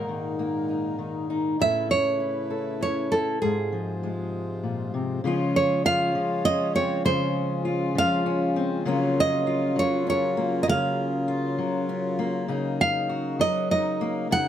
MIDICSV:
0, 0, Header, 1, 4, 480
1, 0, Start_track
1, 0, Key_signature, -5, "major"
1, 0, Tempo, 604230
1, 1269, Time_signature, 3, 2, 24, 8
1, 11505, End_track
2, 0, Start_track
2, 0, Title_t, "Nylon-string guitar"
2, 0, Program_c, 0, 24
2, 0, Note_on_c, 0, 70, 60
2, 757, Note_off_c, 0, 70, 0
2, 1283, Note_on_c, 0, 76, 81
2, 1500, Note_off_c, 0, 76, 0
2, 1516, Note_on_c, 0, 73, 85
2, 2203, Note_off_c, 0, 73, 0
2, 2244, Note_on_c, 0, 73, 67
2, 2476, Note_on_c, 0, 69, 72
2, 2486, Note_off_c, 0, 73, 0
2, 2711, Note_off_c, 0, 69, 0
2, 2714, Note_on_c, 0, 68, 63
2, 3887, Note_off_c, 0, 68, 0
2, 4419, Note_on_c, 0, 73, 83
2, 4633, Note_off_c, 0, 73, 0
2, 4654, Note_on_c, 0, 77, 102
2, 5094, Note_off_c, 0, 77, 0
2, 5125, Note_on_c, 0, 75, 92
2, 5364, Note_off_c, 0, 75, 0
2, 5367, Note_on_c, 0, 73, 84
2, 5602, Note_off_c, 0, 73, 0
2, 5605, Note_on_c, 0, 72, 83
2, 6339, Note_off_c, 0, 72, 0
2, 6342, Note_on_c, 0, 77, 86
2, 6776, Note_off_c, 0, 77, 0
2, 7310, Note_on_c, 0, 75, 88
2, 7775, Note_off_c, 0, 75, 0
2, 7778, Note_on_c, 0, 73, 83
2, 8011, Note_off_c, 0, 73, 0
2, 8021, Note_on_c, 0, 73, 77
2, 8442, Note_off_c, 0, 73, 0
2, 8445, Note_on_c, 0, 75, 77
2, 8485, Note_off_c, 0, 75, 0
2, 8496, Note_on_c, 0, 77, 100
2, 9651, Note_off_c, 0, 77, 0
2, 10176, Note_on_c, 0, 77, 84
2, 10648, Note_off_c, 0, 77, 0
2, 10651, Note_on_c, 0, 75, 89
2, 10884, Note_off_c, 0, 75, 0
2, 10894, Note_on_c, 0, 75, 79
2, 11330, Note_off_c, 0, 75, 0
2, 11379, Note_on_c, 0, 78, 95
2, 11505, Note_off_c, 0, 78, 0
2, 11505, End_track
3, 0, Start_track
3, 0, Title_t, "Harmonium"
3, 0, Program_c, 1, 20
3, 0, Note_on_c, 1, 46, 63
3, 0, Note_on_c, 1, 56, 49
3, 0, Note_on_c, 1, 63, 56
3, 0, Note_on_c, 1, 70, 69
3, 1237, Note_off_c, 1, 56, 0
3, 1251, Note_off_c, 1, 63, 0
3, 1251, Note_off_c, 1, 70, 0
3, 1252, Note_off_c, 1, 46, 0
3, 1273, Note_on_c, 1, 49, 56
3, 1273, Note_on_c, 1, 57, 59
3, 1273, Note_on_c, 1, 64, 54
3, 1278, Note_on_c, 1, 71, 64
3, 2700, Note_off_c, 1, 57, 0
3, 2700, Note_off_c, 1, 64, 0
3, 2701, Note_off_c, 1, 49, 0
3, 2703, Note_off_c, 1, 71, 0
3, 2709, Note_on_c, 1, 65, 61
3, 2712, Note_on_c, 1, 72, 65
3, 2713, Note_on_c, 1, 48, 57
3, 2717, Note_on_c, 1, 56, 51
3, 4141, Note_off_c, 1, 56, 0
3, 4142, Note_off_c, 1, 65, 0
3, 4143, Note_off_c, 1, 72, 0
3, 4144, Note_off_c, 1, 48, 0
3, 4151, Note_on_c, 1, 49, 67
3, 4152, Note_on_c, 1, 73, 85
3, 4153, Note_on_c, 1, 56, 72
3, 4157, Note_on_c, 1, 65, 63
3, 5581, Note_off_c, 1, 73, 0
3, 5600, Note_on_c, 1, 61, 81
3, 7003, Note_off_c, 1, 56, 0
3, 7021, Note_off_c, 1, 61, 0
3, 7040, Note_on_c, 1, 70, 92
3, 7045, Note_on_c, 1, 54, 70
3, 9878, Note_off_c, 1, 65, 0
3, 9887, Note_off_c, 1, 54, 0
3, 9908, Note_on_c, 1, 54, 63
3, 9912, Note_on_c, 1, 63, 73
3, 11505, Note_off_c, 1, 49, 0
3, 11505, Note_off_c, 1, 54, 0
3, 11505, Note_off_c, 1, 63, 0
3, 11505, Note_off_c, 1, 70, 0
3, 11505, End_track
4, 0, Start_track
4, 0, Title_t, "Steel-string acoustic guitar"
4, 0, Program_c, 2, 25
4, 0, Note_on_c, 2, 44, 58
4, 0, Note_on_c, 2, 58, 52
4, 0, Note_on_c, 2, 63, 49
4, 68, Note_on_c, 2, 51, 47
4, 302, Note_off_c, 2, 58, 0
4, 311, Note_on_c, 2, 58, 47
4, 537, Note_off_c, 2, 63, 0
4, 547, Note_on_c, 2, 63, 45
4, 774, Note_off_c, 2, 51, 0
4, 783, Note_on_c, 2, 51, 55
4, 1023, Note_off_c, 2, 63, 0
4, 1032, Note_on_c, 2, 63, 49
4, 1242, Note_off_c, 2, 58, 0
4, 1242, Note_off_c, 2, 63, 0
4, 1244, Note_off_c, 2, 44, 0
4, 1266, Note_off_c, 2, 51, 0
4, 1266, Note_on_c, 2, 45, 60
4, 1272, Note_on_c, 2, 61, 48
4, 1276, Note_on_c, 2, 64, 54
4, 1281, Note_on_c, 2, 69, 51
4, 1497, Note_off_c, 2, 61, 0
4, 1506, Note_on_c, 2, 61, 47
4, 1740, Note_off_c, 2, 64, 0
4, 1749, Note_on_c, 2, 64, 50
4, 1980, Note_off_c, 2, 69, 0
4, 1990, Note_on_c, 2, 69, 54
4, 2221, Note_off_c, 2, 61, 0
4, 2231, Note_on_c, 2, 61, 54
4, 2469, Note_off_c, 2, 64, 0
4, 2479, Note_on_c, 2, 64, 53
4, 2683, Note_off_c, 2, 45, 0
4, 2684, Note_off_c, 2, 61, 0
4, 2684, Note_off_c, 2, 69, 0
4, 2687, Note_off_c, 2, 64, 0
4, 2718, Note_on_c, 2, 44, 65
4, 2958, Note_on_c, 2, 53, 52
4, 3205, Note_on_c, 2, 56, 48
4, 3681, Note_on_c, 2, 46, 54
4, 3920, Note_off_c, 2, 46, 0
4, 3923, Note_on_c, 2, 48, 57
4, 4132, Note_off_c, 2, 44, 0
4, 4132, Note_off_c, 2, 53, 0
4, 4159, Note_off_c, 2, 48, 0
4, 4162, Note_on_c, 2, 49, 75
4, 4172, Note_on_c, 2, 53, 61
4, 4181, Note_on_c, 2, 61, 56
4, 4188, Note_on_c, 2, 65, 67
4, 4646, Note_off_c, 2, 65, 0
4, 4649, Note_on_c, 2, 65, 64
4, 4881, Note_off_c, 2, 49, 0
4, 4881, Note_off_c, 2, 53, 0
4, 4884, Note_on_c, 2, 53, 68
4, 5124, Note_off_c, 2, 61, 0
4, 5128, Note_on_c, 2, 61, 59
4, 5360, Note_off_c, 2, 56, 0
4, 5363, Note_on_c, 2, 60, 59
4, 5572, Note_off_c, 2, 60, 0
4, 5597, Note_on_c, 2, 49, 71
4, 5599, Note_off_c, 2, 61, 0
4, 5602, Note_on_c, 2, 61, 63
4, 6073, Note_off_c, 2, 65, 0
4, 6077, Note_on_c, 2, 65, 64
4, 6313, Note_off_c, 2, 53, 0
4, 6316, Note_off_c, 2, 49, 0
4, 6316, Note_on_c, 2, 53, 65
4, 6559, Note_off_c, 2, 61, 0
4, 6562, Note_on_c, 2, 61, 63
4, 6802, Note_on_c, 2, 60, 64
4, 7009, Note_off_c, 2, 60, 0
4, 7033, Note_on_c, 2, 49, 75
4, 7034, Note_off_c, 2, 53, 0
4, 7037, Note_on_c, 2, 54, 66
4, 7044, Note_on_c, 2, 58, 61
4, 7047, Note_off_c, 2, 61, 0
4, 7050, Note_on_c, 2, 61, 65
4, 7052, Note_off_c, 2, 65, 0
4, 7055, Note_on_c, 2, 65, 67
4, 7518, Note_off_c, 2, 65, 0
4, 7521, Note_on_c, 2, 65, 68
4, 7749, Note_off_c, 2, 54, 0
4, 7752, Note_off_c, 2, 49, 0
4, 7752, Note_on_c, 2, 54, 69
4, 7994, Note_off_c, 2, 61, 0
4, 7997, Note_on_c, 2, 61, 65
4, 8236, Note_off_c, 2, 58, 0
4, 8239, Note_on_c, 2, 58, 67
4, 8480, Note_on_c, 2, 49, 76
4, 8481, Note_off_c, 2, 61, 0
4, 8485, Note_on_c, 2, 61, 63
4, 8951, Note_off_c, 2, 65, 0
4, 8960, Note_on_c, 2, 65, 65
4, 8984, Note_off_c, 2, 54, 0
4, 9195, Note_off_c, 2, 49, 0
4, 9201, Note_on_c, 2, 54, 63
4, 9443, Note_off_c, 2, 61, 0
4, 9446, Note_on_c, 2, 61, 62
4, 9679, Note_off_c, 2, 58, 0
4, 9682, Note_on_c, 2, 58, 63
4, 9916, Note_off_c, 2, 65, 0
4, 9917, Note_on_c, 2, 49, 76
4, 9919, Note_off_c, 2, 61, 0
4, 9922, Note_on_c, 2, 63, 60
4, 10402, Note_on_c, 2, 66, 62
4, 10634, Note_off_c, 2, 49, 0
4, 10637, Note_off_c, 2, 54, 0
4, 10640, Note_on_c, 2, 54, 68
4, 10886, Note_off_c, 2, 63, 0
4, 10889, Note_on_c, 2, 63, 63
4, 11126, Note_off_c, 2, 58, 0
4, 11129, Note_on_c, 2, 58, 68
4, 11326, Note_off_c, 2, 54, 0
4, 11327, Note_off_c, 2, 66, 0
4, 11331, Note_off_c, 2, 58, 0
4, 11366, Note_on_c, 2, 49, 74
4, 11368, Note_off_c, 2, 63, 0
4, 11371, Note_on_c, 2, 63, 67
4, 11505, Note_off_c, 2, 49, 0
4, 11505, Note_off_c, 2, 63, 0
4, 11505, End_track
0, 0, End_of_file